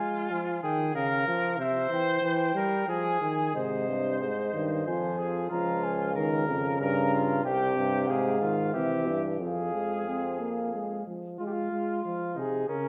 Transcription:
Already playing: trumpet F4, cornet G#5
0.00 trombone G#3
0.31 trombone F3, cornet G#5
0.63 trombone D#3, trumpet G#4, cornet G5
0.95 trombone C#3, trumpet A#4, cornet F5
1.28 trombone F3, cornet F5
1.58 trombone C3, trumpet C5, cornet E5
1.90 trombone E3, cornet G5
2.22 trombone E3, cornet G5
2.55 trombone G3, trumpet A#4
2.88 trombone F3, trumpet G#4, cornet G#5
3.22 trombone D#3, cornet G#5
3.54 euphonium G#2, trombone C3, trumpet C5, cornet D#5
3.88 euphonium G2
4.20 euphonium G#2, cornet D#5
4.53 euphonium G2, trombone D#3
4.86 euphonium F2, trombone F3, trumpet C5, cornet G#5
5.18 trumpet G#4
5.50 euphonium C#2, trombone F3, trumpet F4, cornet A#5
5.84 cornet G#5
6.16 trombone D#3, trumpet A#4, cornet A#5
6.48 euphonium F2, trombone C#3
6.81 euphonium G2, trumpet A#4, cornet A#5
7.14 trumpet F4
7.44 euphonium C2, trombone C3, trumpet G4, cornet G5
7.77 euphonium G2
8.07 euphonium G#2, trumpet G#4, cornet F5
8.41 trombone D#3, trumpet F4
8.73 euphonium C3, trombone E3, trumpet G4, cornet E5
9.07 euphonium G2
9.39 euphonium F2, trombone F3, trumpet G#4, cornet F5
9.74 trombone G#3
10.08 trombone C4
10.41 trombone A#3
10.74 trombone G#3
11.07 trombone F3
11.38 trombone G#3, cornet F4, trumpet F4
11.46 cornet G4
11.53 cornet F4
11.72 trombone G#3
12.03 trombone F3, trumpet F4
12.34 trombone C3, trumpet D#4
12.39 cornet G#4
12.68 trombone C#3, trumpet C#4, cornet A#4

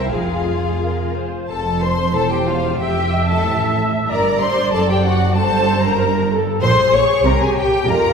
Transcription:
Already playing: double bass section C2, cello section C2, violin section E4 A#4 E5, viola section C5
0.11 double bass section F1, cello section F2, violin section F4 G#4 F5, viola section G#4
0.82 viola section A#4
1.16 viola section C5
1.49 double bass section F1, cello section F2, violin section A4 A5
1.82 violin section C5 C6
2.14 double bass section E1, cello section E2, violin section A4 A5, viola section C5
2.32 violin section G4 G5
2.47 violin section F4 F5
2.80 double bass section F1, cello section F2, violin section G4 G5, viola section E5
3.28 violin section A4 A5
3.45 double bass section A1, cello section A2
4.09 double bass section G1, cello section G2, violin section A#4 A#5, viola section D5
4.40 violin section C5 C6
4.73 double bass section F#1, cello section F#2, violin section A4 A5
4.89 violin section G4 G5
5.04 violin section F#4 F#5
5.35 double bass section G1, cello section G2, violin section A4 A5, viola section C5
5.84 violin section A#4 A#5
6.01 viola section A#4
6.31 viola section A4
6.62 double bass section A#1, cello section A#2, viola section G#4, violin section C5 C6
6.93 double bass section A#1, cello section A#2, violin section C#5 C#6
7.24 double bass section C2, cello section C3, viola section G4, violin section A#4 A#5
7.40 cello section C3, violin section G#4 G#5
7.55 violin section G4 G5
7.86 double bass section F1, cello section F2, viola section F4, violin section A#4 A#5

